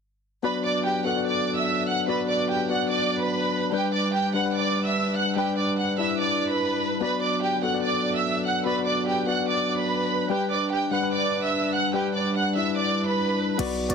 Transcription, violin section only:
0.44 B4 B5
0.64 D5 D6
0.85 G4 G5
1.06 F#5 F#6
1.26 D5 D6
1.57 E5 E6
1.88 F#5 F#6
2.08 B4 B5
2.29 D5 D6
2.50 G4 G5
2.70 F#5 F#6
2.91 D5 D6
3.21 B4 B5
3.73 G4 G5
3.93 D5 D6
4.14 G4 G5
4.34 F#5 F#6
4.55 D5 D6
4.86 E5 E6
5.16 F#5 F#6
5.37 G4 G5
5.58 D5 D6
5.78 F#5 F#6
5.99 E5 E6
6.20 D5 D6
6.50 B4 B5
7.02 B4 B5
7.22 D5 D6
7.42 G4 G5
7.63 F#5 F#6
7.84 D5 D6
8.14 E5 E6
8.45 F#5 F#6
8.66 B4 B5
8.87 D5 D6
9.07 G4 G5
9.28 F#5 F#6
9.48 D5 D6
9.79 B4 B5
10.30 G4 G5
10.51 D5 D6
10.71 G4 G5
10.92 F#5 F#6
11.13 D5 D6
11.43 E5 E6
11.74 F#5 F#6
11.94 G4 G5
12.15 D5 D6
12.36 F#5 F#6
12.56 E5 E6
12.77 D5 D6
13.08 B4 B5

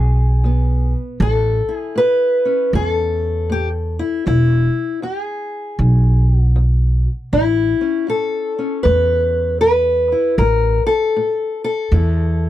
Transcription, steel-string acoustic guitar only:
Already playing: E2 G#4
0.44 E2 B3
1.20 A2 A4
1.69 E4
1.74 G#4
1.95 A2 B4
2.45 C#4
2.74 A2 G#4
2.86 A4
3.50 A2 G4
3.99 E4
4.26 E2 E4
5.02 E2 G4
5.20 G#4
5.79 E2
6.29 G4
6.41 F#4
6.56 E2
7.33 A2 E4
7.81 C#4
8.08 A2 A4
8.59 C#4
8.83 A2 B4
9.61 A2 B4
10.12 E4
10.38 A2 A#4
10.87 A4
11.16 A2
11.64 A4
11.92 A2 E4

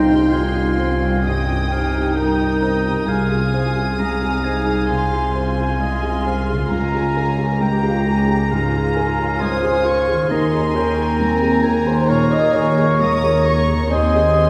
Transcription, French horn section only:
Already playing: D#4
0.31 F4
1.23 G4
2.15 A#4
3.08 G#4
6.70 F4
7.39 G#4
7.61 G4
7.84 F4
8.06 G#4
8.30 G4
8.50 G#4
9.41 C5
10.30 A#4
11.87 C5
12.09 C#5
12.32 D#5
12.54 C#5
13.91 D#5

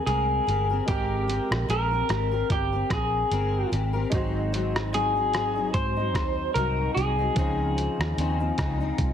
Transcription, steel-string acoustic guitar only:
0.07 G#3 C4 A#4
0.47 G#3 C4 G4 A#4
0.70 C4 G4 A#4
0.88 G#3 C4 G4 A#4
1.28 G#3 C4 G4 A#4
1.68 G#3 C4 G4 A#4
1.91 C4 G4 A#4
2.09 G#3 C4 G4 A#4
2.31 C4 G4 A#4
2.72 C4 A#4
3.32 G#3 C4 A#4
3.72 G#3 C4 G4 A#4
3.93 C4 G4 A#4
4.12 G#2 F#3 C4 D#4
4.53 G#2 F#3 C4 D#4
4.93 G#2 F#3 C4 D#4
5.15 F#3 C4 D#4
5.34 G#2 F#3 C4 D#4
5.56 F#3 C4 D#4
5.97 F#3 C4 D#4
6.56 G#2 F#3 C4 D#4
6.96 G#2 F#3 C4 D#4
7.18 F#3 C4 D#4
7.37 C#3 F3 C4 D#4
7.77 C#3 F3 C4 D#4
8.18 C#3 F3 C4 D#4
8.40 F3 C4 D#4
8.58 C#3 F3 C4 D#4
8.80 F3 C4 D#4

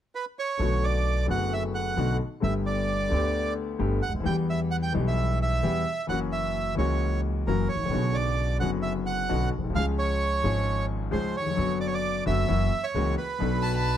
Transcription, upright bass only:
0.59 B1
1.29 F#1
1.97 B1
2.43 G1
3.12 D2
3.80 G1
4.08 C#2
4.14 D2
4.20 D#2
4.25 E2
4.95 B1
5.64 E2
6.09 F#1
6.79 C#2
7.47 F#1
7.76 G#1
7.82 A1
7.88 A#1
7.94 B1
8.62 F#1
9.31 B1
9.58 A#1
9.64 B1
9.69 C2
9.75 C#2
10.44 G#1
11.13 C#2
11.58 F#1
12.27 F#1
12.50 F#1
12.94 C#2
13.40 B1

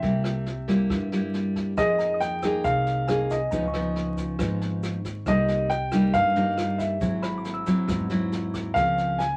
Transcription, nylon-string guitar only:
0.02 C3 G3 A#3 E4
0.68 G3 A#3 E4
0.90 G2
1.12 G3 A#3 E4
1.78 F3 A#3 D#4 G#4
2.44 A#3 D#4 G#4
2.64 C3
3.08 A#3 D#4 G#4
3.52 C#3 F3 B3 D#4
3.74 F3 B3 D#4
4.39 G#2 F3 B3 D#4
5.26 C3 G3 A#3 D#4
5.93 G3 A#3 D#4
6.14 G2
6.36 G3 A#3 D#4
7.01 G#2 F#3 C4 E4
7.66 F#3 C4 E4
7.88 G#2
8.10 F#3 C4 E4
8.75 C#3 F3 A#3 C4

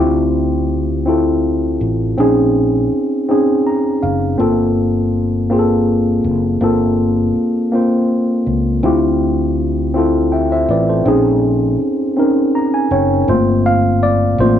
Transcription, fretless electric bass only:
Already playing: D2
1.81 A1
2.18 A#1
2.92 muted fretless electric bass stroke
4.03 F#1
4.40 G1
6.24 F#1
6.61 G1
7.35 muted fretless electric bass stroke
8.47 C#2
8.83 D2
10.69 A1
11.05 A#1
11.80 muted fretless electric bass stroke
12.91 F#1
13.28 G1
14.38 A1

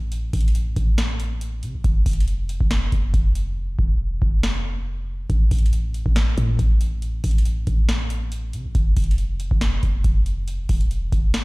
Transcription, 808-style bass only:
Already playing: A1
0.33 A1
0.76 A1
1.63 C3
1.74 A1
1.84 F1
2.06 F1
2.61 F1
2.92 F1
3.14 F1
3.79 E1
4.22 F1
5.30 A1
5.51 A1
6.06 A1
6.38 A2
6.59 A1
7.24 A1
7.67 A1
8.53 C3
8.65 A1
8.75 F1
8.97 F1
9.51 F1
9.83 F1
10.04 F1
10.69 E1
11.12 F1

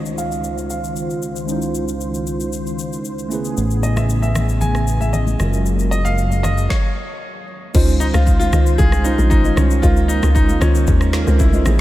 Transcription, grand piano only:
0.18 F5
0.70 F5
3.83 D#5
3.96 E5
4.22 E5
4.61 G#5
5.01 E5
5.13 D#5
5.91 D#5
6.05 F5
6.43 D#5
6.69 C#5
8.00 D#4
8.14 F4
8.40 F4
8.78 G#4
9.04 D#4
9.30 D#4
9.56 C#4
9.82 F4
10.08 D#4
10.29 F4
10.35 D#4
10.61 C#4
11.27 C4
11.40 E4

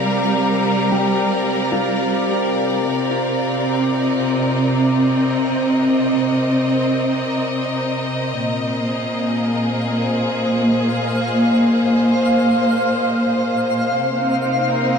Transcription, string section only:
Already playing: G3 G4 A#4 D5 F5
2.85 C3
2.96 C4
3.99 D#5
8.40 A#2
8.68 G#4
8.76 A#3
9.96 C5
13.95 C3
14.13 D#4
14.19 C4
14.67 A#4

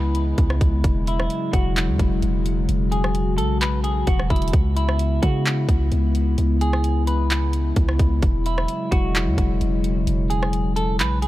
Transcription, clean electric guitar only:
Already playing: B4
1.08 E4
1.53 F#4
2.92 G#4
3.38 A4
3.61 B4
3.84 G#4
4.07 F#4
4.30 E4
4.77 E4
5.22 F#4
6.61 G#4
7.07 B4
8.46 E4
8.91 F#4
10.30 G#4
10.76 A4
11.00 B4
11.22 G#4

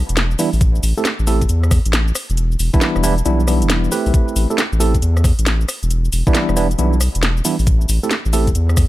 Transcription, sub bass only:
0.09 E1
0.53 A1
0.83 A1
1.19 A1
1.49 E2
1.86 A1
2.30 E1
2.59 E1
2.96 E1
3.26 B1
3.62 E1
4.06 B1
4.36 A1
4.72 A1
5.02 E2
5.39 A1
5.83 E1
6.13 E1
6.49 E1
6.79 B1
7.15 E1
7.59 A1
7.89 A1
8.26 A1
8.55 E2

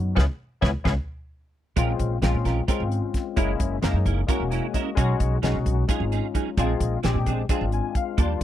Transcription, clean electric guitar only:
0.16 G#4 B4 C#5
0.62 G#4 B4 C#5
0.85 G#4 B4 C#5
1.76 G#3 C#4 F4 A#4
2.22 G#3 C#4 F4 A#4
2.45 C#4 F4 A#4
2.68 G#3 C#4 F4 A#4
3.37 G#3 C#4 E4 A#4
3.83 G#3 C#4 E4 A#4
4.06 C#4 E4 A#4
4.28 G#3 C#4 E4 A#4
4.51 C#4 E4 A#4
4.74 G#3 C#4 E4 A#4
4.97 F#3 C#4 D#4 G#4
5.42 F#3 C#4 D#4 G#4
5.89 F#3 C#4 D#4 G#4
6.12 C#4 D#4 G#4
6.34 F#3 C#4 D#4 G#4
6.58 F3 C4 D4 G#4
7.03 F3 C4 D4 G#4
7.27 C4 D4 G#4
7.49 F3 C4 D4 G#4
8.18 F3 A#3 D4 G4

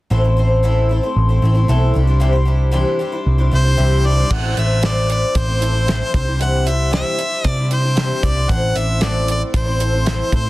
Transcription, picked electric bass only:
0.11 A1
1.16 A1
1.42 A1
1.69 B1
1.96 C2
3.26 C2
3.53 C2
3.79 C2
4.31 A1
4.57 A1
5.35 A1
6.14 C2
7.45 C3
8.23 C2
8.50 A1
8.75 A1
9.54 A1
10.32 A2

